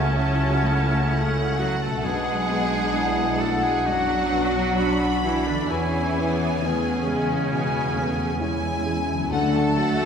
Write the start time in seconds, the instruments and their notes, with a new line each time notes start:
Already playing: grand piano C#2 A3 C#4 F#4, double bass section C#2, cello section C#3, harp C#3 C#4 F#4 A4, viola section A3 E4, french horn section A3, clarinet A3, violin section C#4 A5, oboe C#4, flute section F#5
0.17 grand piano C#3, viola section F#3, french horn section F#3, violin section A5
0.64 french horn section A3, viola section A3, grand piano A3
1.11 grand piano C#4, violin section F#5
1.58 cello section F#3, violin section F#4, oboe F#4, grand piano F#4
1.81 cello section A3, oboe A4, violin section A4
1.87 harp B2
1.91 harp D4
1.96 harp F#4 B4
2.04 grand piano B1, double bass section B1, cello section G#3, viola section B3 D4, french horn section B3, clarinet D4, oboe G#4, violin section G#4 F#5, flute section F#5
2.49 grand piano B3
2.93 grand piano D4, french horn section E4
3.39 cello section A3, grand piano F#4, violin section A4, oboe A4
3.63 cello section G#3, oboe G#4, violin section G#4
3.86 grand piano F#2, cello section F#3, french horn section D4, viola section D4 F#4, oboe F#4, violin section F#4 F#5
4.32 grand piano B3, viola section D4
4.78 grand piano D4, viola section F#4, violin section B5
5.23 cello section E3, oboe E4, violin section E4, grand piano F#4
5.46 cello section D3, oboe D4, violin section D4
5.51 harp E3
5.56 harp B3
5.61 harp E4
5.65 violin section E4, oboe E4, harp G#4
5.70 double bass section E2, grand piano E2, cello section E3, clarinet B3, french horn section C#4, viola section C#4 G#4, violin section G#5, flute section G#5
6.17 viola section B3, grand piano B3
6.62 cello section C#3, viola section A3, french horn section B3, oboe C#4, violin section C#4, grand piano E4
7.07 french horn section G#3, viola section G#3, grand piano G#4
7.51 grand piano B2, french horn section G#3, viola section B3 G#4, violin section G#5
7.96 viola section A3, french horn section B3, grand piano B3
8.41 viola section G#3 E4, french horn section C#4, grand piano E4, violin section G#5
8.86 grand piano G#4
9.14 harp D3
9.19 harp F#3
9.23 harp F#4
9.28 grand piano D2, clarinet A3, cello section A3, harp A4, violin section A4, flute section F#5
9.32 double bass section D2, viola section A3 F#4, french horn section D4, oboe A4, violin section F#5
9.55 viola section F#3 A4, violin section A5
9.77 grand piano F#3, viola section A3 F#4, french horn section F#4, violin section F#5
10.02 viola section F#3 A4, violin section A5